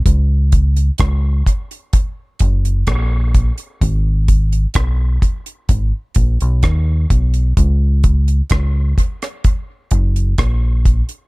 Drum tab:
HH |x-xxx-xxx-xxx-xx|x-xxx-xxx-xxx-xx|x-xxx-xxx-xxx-xx|
SD |----r-------r---|----r-------r---|----r--r----r---|
BD |o-o-o-o-o-o-o-o-|o-o-o-o-o-o-o-o-|o-o-o-o-o-o-o-o-|